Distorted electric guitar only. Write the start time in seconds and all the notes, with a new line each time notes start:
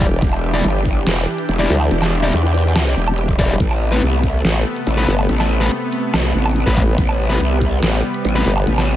0.54 G3 E4 D5
1.59 G3 E4 D5
2.23 G3 E4 D5
3.39 G3 E4 D5
3.92 A3 C4 B4
4.97 A3 C4 B4
5.61 A3 C4 B4
6.66 A3 C4 B4
7.30 A3 C4 B4
8.35 A3 C4 B4